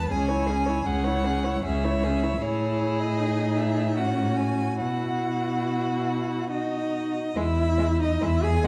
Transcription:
0.00 0.11 B3 soft
0.00 0.13 A5 loud
0.10 0.78 C#2 medium
0.10 0.32 C#4 medium
0.10 0.30 G#4 medium
0.10 0.88 G#5 medium
0.29 0.51 E4 soft
0.29 0.49 C#5 medium
0.47 0.70 C#4 medium
0.47 0.68 G#4 soft
0.67 0.87 E4 soft
0.67 0.84 C#5 soft
0.84 1.55 C#2 medium
0.84 1.08 C#4 medium
0.84 1.06 G#4 medium
0.84 1.64 F#5 medium
1.04 1.28 E4 soft
1.04 1.26 C#5 soft
1.25 1.47 C#4 soft
1.25 1.46 G#4 medium
1.44 1.64 E4 soft
1.44 1.64 C#5 soft
1.64 2.33 C#2 medium
1.64 1.86 C#4 medium
1.64 1.86 G#4 soft
1.64 2.44 E5 medium
1.84 2.05 E4 soft
1.84 2.05 C#5 soft
2.04 2.24 C#4 soft
2.04 2.25 G#4 soft
2.23 2.42 E4 soft
2.23 2.42 C#5 soft
2.42 4.83 A2 medium
2.42 3.20 E4 medium
2.42 3.94 G#4 medium
2.42 3.01 C#5 medium
3.00 3.58 D#5 medium
3.19 4.00 D#4 soft
3.57 3.99 E5 medium
3.97 4.81 C#4 soft
3.97 4.80 F#4 soft
3.97 4.39 F#5 medium
4.37 4.81 G#5 medium
4.81 7.16 B2 soft
4.81 6.48 E4 soft
4.81 6.48 F#4 medium
4.81 6.48 F#5 medium
6.51 7.33 D#4 medium
6.51 7.15 F#4 soft
6.51 7.38 D#5 medium
7.36 8.12 E2 medium
7.36 7.44 G#3 medium
7.36 8.01 E4 medium
7.36 8.01 E5 medium
7.78 7.86 G#3 soft
8.00 8.24 D#4 medium
8.00 8.25 D#5 medium
8.21 8.67 E2 medium
8.21 8.29 G#3 medium
8.21 8.45 E4 medium
8.21 8.46 E5 medium
8.43 8.67 G#4 medium
8.43 8.66 G#5 medium
8.64 8.67 G#3 medium

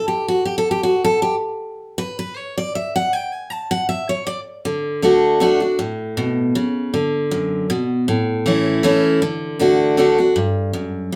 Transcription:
0.08 0.28 G4 medium
0.28 0.45 F#4 medium
0.45 0.57 G4 medium
0.58 0.70 A4 medium
0.71 0.83 G4 medium
0.83 1.04 F#4 medium
1.05 1.22 A4 loud
1.22 1.35 G4 medium
1.98 2.18 B4 loud
2.19 2.37 B4 medium
2.37 2.57 C#5 medium
2.58 2.74 D5 loud
2.75 2.95 E5 medium
2.96 3.13 F#5 loud
3.13 3.33 G5 loud
3.33 3.50 G#5 loud
3.50 3.70 A5 loud
3.71 3.88 F#5 loud
3.89 4.09 E5 medium
4.09 4.26 C#5 medium
4.27 4.39 D5 loud
4.65 5.01 D3 medium
5.02 5.39 D3 medium
5.02 5.39 A3 medium
5.02 5.40 D4 medium
5.02 5.40 F#4 medium
5.40 5.60 D3 medium
5.40 5.61 A3 medium
5.40 5.61 D4 loud
5.40 5.59 F#4 medium
5.60 5.79 D4 medium
5.60 5.78 F#4 medium
5.79 6.52 A2 medium
6.17 6.53 B2 medium
6.55 6.92 C#3 medium
6.94 7.66 D3 medium
7.31 7.68 F#2 medium
7.70 8.06 B2 medium
8.08 8.80 A2 medium
8.46 8.82 E3 medium
8.46 8.82 A3 medium
8.46 8.83 C#4 medium
8.46 8.83 E4 medium
8.83 9.20 E3 medium
8.83 9.20 A3 medium
8.83 9.20 C#4 loud
8.83 9.21 E4 loud
9.22 9.58 D3 medium
9.59 9.96 D3 medium
9.59 9.96 A3 medium
9.59 9.97 D4 medium
9.59 9.97 F#4 loud
9.97 10.17 D3 medium
9.97 10.18 A3 medium
9.97 10.18 D4 loud
9.97 10.17 F#4 medium
10.18 10.36 D4 soft
10.18 10.35 F#4 medium
10.36 10.73 G2 medium
10.73 11.10 F#2 medium
11.12 11.16 G2 medium

